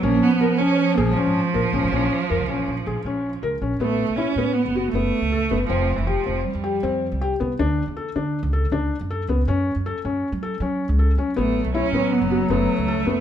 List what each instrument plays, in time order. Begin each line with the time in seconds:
0.03 upright bass A#1, clarinet F3, cello A#3, felt piano C#4
0.22 cello B3
0.41 felt piano A#4
0.58 cello C#4, felt piano C#4
0.94 upright bass A#1, cello A#3, felt piano G#4
1.13 cello F3, felt piano C#4
1.26 upright bass G#1
1.54 upright bass A#1, felt piano A#4
1.73 upright bass A#1, felt piano C#4
1.83 upright bass G#1
1.92 upright bass A#1, felt piano C#4
2.30 upright bass F2, felt piano A#4
2.38 upright bass C#2
2.48 upright bass A#1, felt piano C#4
2.67 upright bass A#1
2.86 upright bass A#1, felt piano G#4
3.05 upright bass A#1, felt piano C#4
3.42 upright bass C#2, felt piano A#4
3.61 upright bass A#1, felt piano C#4
3.80 upright bass A1, cello A3, felt piano B3
4.08 upright bass B1
4.17 cello C#4, felt piano E4
4.36 upright bass A2, felt piano B3
4.53 cello B3
4.65 upright bass F#1
4.76 felt piano F#4
4.91 upright bass F#1, cello A3
4.95 felt piano B3
5.21 upright bass C#2
5.32 felt piano A4
5.51 upright bass F#1, felt piano B3
5.66 upright bass F1, cello F3, felt piano C4
5.96 upright bass F1, cello E3
6.07 cello F3, felt piano G4
6.26 upright bass F1, felt piano C4
6.44 cello G3
6.55 upright bass F2
6.64 felt piano G4
6.83 upright bass F2, felt piano C4
7.12 upright bass C2
7.21 felt piano G4
7.40 upright bass C2, felt piano B3
7.59 upright bass D2, felt piano D4
7.88 upright bass E2
7.97 felt piano A4
8.16 upright bass D3, felt piano D4
8.43 upright bass C#2
8.53 felt piano A4
8.71 upright bass C#2, felt piano D4
9.01 upright bass F#2
9.10 felt piano A4
9.28 upright bass C#2, felt piano B3
9.47 upright bass F#2, felt piano C#4
9.76 upright bass F#2
9.86 felt piano A4
10.05 upright bass F#2, felt piano C#4
10.32 upright bass F#3
10.43 felt piano A4
10.60 upright bass F#3, felt piano C#4
10.89 upright bass C#2
10.99 felt piano A4
11.17 upright bass F#3, felt piano C#4
11.36 upright bass A1, clarinet F#3, cello A3, felt piano B3
11.65 upright bass B1
11.74 cello C#4, felt piano E4
11.92 upright bass A2, felt piano B3
12.11 cello B3
12.21 upright bass F#1
12.31 felt piano F#4
12.50 upright bass F#1, cello A3, felt piano B3
12.78 upright bass C#2
12.88 felt piano A4
13.05 upright bass F#1, felt piano B3